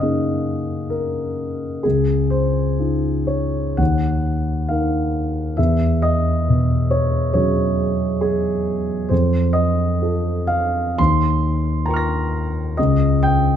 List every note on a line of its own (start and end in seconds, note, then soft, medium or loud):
0.00 1.80 F#2 soft
0.00 0.56 C#3 soft
0.00 1.80 A#3 soft
0.00 1.81 C#4 soft
0.00 1.81 D#4 soft
0.00 1.81 G#4 soft
0.00 1.87 D#5 soft
0.00 1.87 F5 medium
0.00 1.86 F#5 medium
0.90 1.83 A#4 soft
1.83 3.76 C#2 soft
1.83 2.31 G#4 soft
2.30 3.28 C5 medium
2.80 3.76 D#4 soft
2.80 3.76 F4 soft
3.27 3.79 C#5 soft
3.77 5.53 D#2 soft
3.77 4.69 F#5 medium
4.69 5.54 D#4 soft
4.69 5.54 A#4 soft
4.69 5.57 F5 soft
5.57 9.08 E2 soft
5.57 6.02 E5 medium
6.02 6.91 D#5 medium
6.49 7.89 B2 soft
6.91 7.32 C#5 medium
7.33 9.07 F#3 soft
7.33 9.07 C#4 soft
7.33 9.08 F#4 soft
7.33 8.20 G#4 soft
7.33 8.23 C#5 medium
8.21 9.10 G#4 medium
9.09 10.94 F2 soft
9.09 9.55 C5 medium
9.53 10.48 D#5 medium
10.01 10.94 F4 soft
10.01 10.95 A4 soft
10.47 10.97 F5 medium
10.98 12.74 D#2 soft
10.98 11.87 C6 medium
11.86 12.74 F4 soft
11.86 12.74 A#4 soft
11.86 12.74 G5 soft
11.86 12.77 A#5 medium
11.90 12.75 C#6 soft
11.90 12.77 F6 soft
11.96 12.78 A#6 soft
12.77 13.56 C#2 soft
12.77 13.23 D#5 medium
13.23 13.56 G5 medium